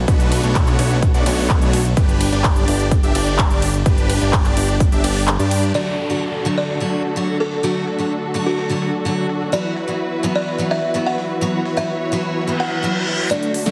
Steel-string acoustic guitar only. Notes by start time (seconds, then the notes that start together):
5.74 D3 F#3 A3 F#4
6.10 D3 F#3 A3 F#4
6.45 D3 F#3 A3 F#4
6.80 D3 F#3 A3 F#4
7.16 D3 F#3 A3 F#4
7.63 D3 F#3 A3 F#4
7.98 D3 F#3 A3 F#4
8.34 D3 F#3 A3 F#4
8.69 D3 F#3 A3 F#4
9.05 D3 F#3 A3 F#4
9.52 E3 F#3 B3 F#4
9.88 E3 F#3 B3 F#4
10.23 E3 F#3 B3 F#4
10.58 E3 F#3 B3 F#4
10.94 E3 F#3 B3 F#4
11.41 E3 F#3 B3 F#4
11.77 E3 F#3 B3 F#4
12.12 E3 F#3 B3 F#4
12.47 E3 F#3 B3 F#4
12.83 E3 F#3 B3 F#4
13.30 D3 F#3 A3 F#4
13.66 D3 F#3 A3 F#4